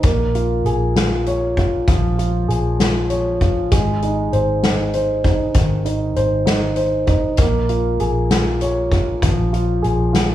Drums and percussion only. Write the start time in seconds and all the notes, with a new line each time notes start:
0.03 kick, closed hi-hat
0.35 closed hi-hat
0.66 closed hi-hat
0.96 snare, closed hi-hat
1.26 closed hi-hat
1.57 kick, closed hi-hat
1.88 kick, closed hi-hat
2.19 closed hi-hat
2.50 closed hi-hat
2.80 snare, closed hi-hat
3.10 closed hi-hat
3.41 kick, closed hi-hat
3.72 kick, closed hi-hat
4.02 closed hi-hat
4.33 closed hi-hat
4.63 snare, closed hi-hat
4.94 closed hi-hat
5.24 kick, closed hi-hat
5.54 kick, closed hi-hat
5.86 closed hi-hat
6.16 closed hi-hat
6.47 snare, closed hi-hat
6.76 closed hi-hat
7.07 kick, closed hi-hat
7.37 kick, closed hi-hat
7.69 closed hi-hat
8.00 closed hi-hat
8.31 snare, closed hi-hat
8.61 closed hi-hat
8.92 kick, closed hi-hat
9.22 kick, closed hi-hat
9.54 closed hi-hat
9.84 closed hi-hat
10.14 snare, closed hi-hat